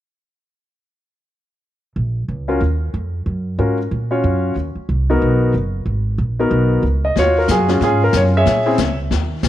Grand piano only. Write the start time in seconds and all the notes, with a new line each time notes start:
2.48 C#4 F4 F#4 A#4
3.59 C#4 F4 F#4 A#4
4.11 C#4 F4 F#4 C#5
5.10 B3 D#4 F#4 A#4
6.39 B3 D#4 F#4 A#4
7.05 D#5
7.19 F4 F#4 C#5
7.38 A#4
7.51 G#4
7.69 C#4 F4 F#4 G#4
7.83 C#4 F4 G#4
8.04 A#4
8.17 C#5
8.37 G#4 C#5 E5
8.66 C4 C#4 E4 G#4